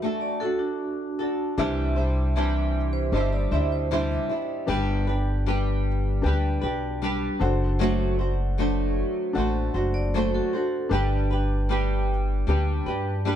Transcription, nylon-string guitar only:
0.02 0.41 A3 medium
0.02 0.42 D4 medium
0.02 0.42 F#4 medium
0.02 0.40 A4 medium
0.41 1.22 D4 soft
0.41 1.19 F#4 medium
0.41 1.18 A4 medium
1.19 1.57 D4 soft
1.19 1.59 F#4 soft
1.19 1.58 A4 medium
1.58 1.97 C3 medium
1.58 1.97 E3 medium
1.58 1.97 G3 medium
1.58 1.97 D4 medium
1.58 1.96 E4 medium
1.58 1.95 C5 medium
1.96 2.35 G3 soft
1.96 2.35 D4 soft
1.96 2.36 E4 medium
1.96 2.35 C5 medium
2.36 3.14 C3 medium
2.36 3.14 E3 medium
2.36 3.12 G3 medium
2.36 3.13 D4 medium
2.36 3.13 E4 medium
2.36 3.14 C5 medium
3.12 3.52 G3 medium
3.12 3.52 D4 medium
3.12 3.51 E4 medium
3.12 3.50 C5 medium
3.52 3.90 G3 soft
3.52 3.90 D4 soft
3.52 3.91 E4 medium
3.52 3.91 C5 medium
3.91 4.30 C3 medium
3.91 4.30 E3 medium
3.91 4.30 G3 medium
3.91 4.30 D4 medium
3.91 4.29 E4 loud
3.91 4.28 C5 medium
4.29 4.66 G3 soft
4.29 4.67 D4 medium
4.29 4.69 E4 medium
4.29 4.69 C5 medium
4.68 5.07 G3 medium
4.68 5.08 D4 medium
4.68 5.07 G4 medium
4.68 5.06 B4 medium
5.07 5.45 D4 soft
5.07 5.46 G4 medium
5.07 5.47 B4 medium
5.46 6.22 G3 medium
5.46 6.24 D4 medium
5.46 6.25 G4 medium
5.46 6.25 B4 medium
6.23 6.63 G3 medium
6.23 6.63 D4 medium
6.23 6.62 G4 medium
6.23 6.60 B4 medium
6.61 7.01 D4 soft
6.61 7.02 G4 medium
6.61 7.01 B4 medium
7.02 7.41 G3 medium
7.02 7.41 D4 medium
7.02 7.42 G4 medium
7.02 7.40 B4 loud
7.41 7.79 D4 soft
7.41 7.80 F#4 medium
7.41 7.80 C5 medium
7.79 8.19 F#3 medium
7.79 8.19 A3 medium
7.79 8.19 D4 medium
7.79 8.19 F#4 medium
7.79 8.18 C5 loud
8.19 8.58 D4 soft
8.19 8.58 F#4 soft
8.19 8.58 C5 medium
8.58 9.36 F#3 medium
8.58 9.34 A3 medium
8.58 9.35 D4 medium
8.58 9.36 F#4 medium
8.58 9.37 C5 medium
9.35 9.74 A3 medium
9.35 9.75 D4 medium
9.35 9.74 F#4 medium
9.35 9.73 C5 medium
9.74 10.14 D4 soft
9.74 10.14 F#4 medium
9.74 10.13 C5 medium
10.14 10.53 F#3 medium
10.14 10.53 A3 medium
10.14 10.53 D4 medium
10.14 10.53 F#4 medium
10.14 10.52 C5 medium
10.53 10.90 D4 soft
10.53 10.92 F#4 soft
10.53 10.92 C5 medium
10.91 11.30 G3 medium
10.91 11.30 D4 medium
10.91 11.31 G4 medium
10.91 11.29 B4 medium
11.31 11.68 D4 soft
11.31 11.69 G4 medium
11.31 11.69 B4 medium
11.69 12.46 G3 medium
11.69 12.47 D4 medium
11.69 12.48 G4 medium
11.69 12.48 B4 medium
12.47 12.86 G3 medium
12.47 12.86 D4 medium
12.47 12.86 G4 medium
12.47 12.85 B4 medium
12.86 13.24 D4 soft
12.86 13.25 G4 medium
12.86 13.25 B4 medium
13.25 13.36 G3 medium
13.25 13.36 D4 medium
13.25 13.36 G4 medium
13.25 13.36 B4 medium

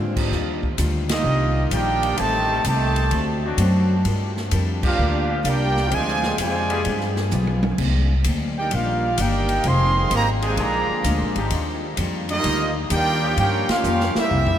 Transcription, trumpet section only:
1.11 1.69 A#3 medium
1.11 1.69 F4 medium
1.11 1.69 G4 medium
1.11 1.69 D#5 medium
1.73 2.20 F4 medium
1.73 2.19 A#4 medium
1.73 2.20 D5 medium
1.73 2.20 G5 loud
2.20 2.66 G4 loud
2.20 2.66 C5 medium
2.20 2.66 D#5 loud
2.20 2.66 A5 loud
2.67 3.10 G4 medium
2.67 3.41 C5 medium
2.67 3.10 D#5 medium
2.67 3.41 A5 loud
4.86 5.38 D4 medium
4.86 5.38 G4 medium
4.86 5.38 A#4 medium
4.86 5.38 F5 loud
5.44 5.47 F5 medium
5.48 5.93 F4 medium
5.48 5.93 A#4 medium
5.48 5.93 D5 medium
5.48 5.93 G5 loud
5.94 6.40 F4 loud
5.94 6.40 C5 loud
5.94 6.40 D5 loud
5.94 6.40 G#5 loud
6.41 7.14 F4 medium
6.41 6.83 C5 medium
6.41 7.14 D5 medium
6.41 7.14 G#5 loud
8.59 8.72 D#4 medium
8.59 8.72 A#4 medium
8.59 8.72 D5 medium
8.59 8.72 G5 medium
8.74 9.19 D#4 medium
8.74 9.19 A#4 medium
8.74 9.20 D5 medium
8.74 9.20 F5 medium
9.22 9.67 D#4 medium
9.22 9.67 A#4 medium
9.22 9.67 D5 medium
9.22 9.67 G5 loud
9.67 10.13 G#4 loud
9.67 10.13 D#5 medium
9.67 10.13 F5 loud
9.67 10.13 C6 loud
10.16 10.30 G4 medium
10.16 10.29 C5 medium
10.16 10.29 D#5 medium
10.16 10.29 A#5 loud
10.46 10.59 F4 medium
10.46 10.59 C5 medium
10.46 10.59 D#5 medium
10.46 10.59 G#5 loud
10.61 11.38 G#4 medium
10.61 11.38 D5 medium
10.61 11.38 F5 medium
10.61 11.38 A#5 loud
12.30 12.74 A#3 loud
12.30 12.74 F4 loud
12.30 12.74 G4 loud
12.30 12.74 D#5 loud
12.93 13.36 F4 loud
12.93 13.36 A#4 loud
12.93 13.36 D5 loud
12.93 13.36 G5 loud
13.40 13.69 F4 loud
13.40 13.69 A#4 loud
13.40 13.69 C#5 medium
13.40 13.69 G5 loud
13.72 14.18 C#4 medium
13.72 14.18 G4 medium
13.72 14.18 A#4 medium
13.72 14.18 F5 loud
14.19 14.59 C4 medium
14.19 14.59 G4 medium
14.19 14.59 A#4 medium
14.19 14.59 E5 loud

